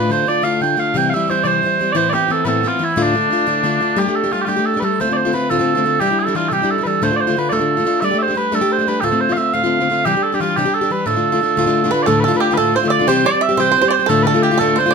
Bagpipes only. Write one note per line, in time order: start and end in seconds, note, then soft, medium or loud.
0.00 0.12 B4 loud
0.12 0.28 C5 medium
0.28 0.44 D5 loud
0.44 0.61 F5 medium
0.61 0.79 G5 medium
0.79 0.97 F5 medium
0.97 1.09 G5 loud
1.09 1.14 F5 medium
1.14 1.30 E5 medium
1.30 1.43 C5 medium
1.43 1.92 C5 loud
1.43 1.47 D5 loud
1.92 1.96 D5 loud
1.96 2.09 C5 loud
2.09 2.13 D5 medium
2.13 2.32 G4 medium
2.32 2.45 A4 medium
2.45 2.68 A4 medium
2.45 2.48 B4 medium
2.68 2.84 F4 medium
2.84 3.02 E4 medium
3.02 3.98 D4 medium
3.98 4.16 G4 medium
4.16 4.32 A4 medium
4.32 4.42 F4 medium
4.42 4.48 F4 medium
4.42 4.45 G4 medium
4.48 4.66 G4 medium
4.66 4.80 A4 medium
4.80 4.84 B4 medium
4.84 5.00 A4 medium
5.00 5.13 C5 medium
5.13 5.34 C5 medium
5.13 5.17 D5 medium
5.34 5.50 B4 medium
5.50 6.00 A4 loud
6.00 6.19 G4 loud
6.19 6.36 A4 medium
6.36 6.49 F4 medium
6.49 6.53 A4 medium
6.53 6.71 G4 medium
6.71 6.83 A4 medium
6.83 7.03 A4 medium
6.83 6.87 B4 medium
7.03 7.16 C5 loud
7.16 7.20 D5 medium
7.20 7.39 C5 medium
7.39 7.49 B4 medium
7.49 8.01 A4 medium
7.49 7.53 D5 medium
8.01 8.18 D5 loud
8.01 8.04 E5 loud
8.18 8.37 C5 medium
8.18 8.22 E5 medium
8.37 8.54 B4 medium
8.54 8.72 A4 medium
8.72 8.88 C5 medium
8.88 9.00 B4 medium
9.00 9.04 G4 medium
9.00 9.21 A4 loud
9.21 9.32 C5 medium
9.32 9.38 F5 medium
9.38 9.54 E5 loud
9.54 10.05 F5 loud
10.05 10.23 G4 loud
10.23 10.34 A4 medium
10.34 10.41 G4 medium
10.41 10.56 F4 medium
10.56 10.74 G4 loud
10.74 10.91 A4 medium
10.91 11.06 B4 medium
11.06 11.91 A4 medium
11.91 12.03 B4 medium
12.03 12.20 A4 medium
12.03 12.06 D5 medium
12.20 12.24 B4 medium
12.24 12.36 A4 medium
12.36 12.40 B4 medium
12.40 12.54 G4 medium
12.54 12.76 A4 medium
12.54 12.57 B4 medium
12.76 12.88 C5 medium
12.88 13.08 D5 loud
12.88 12.91 E5 loud
13.08 13.26 C5 loud
13.26 13.42 D5 loud
13.42 13.60 E5 loud
13.60 13.88 C5 loud
13.88 13.93 D5 medium
13.93 14.09 C5 medium
14.09 14.22 A4 loud
14.22 14.43 A4 medium
14.22 14.26 B4 medium
14.43 14.59 G4 medium
14.59 14.78 A4 loud
14.78 14.93 C5 medium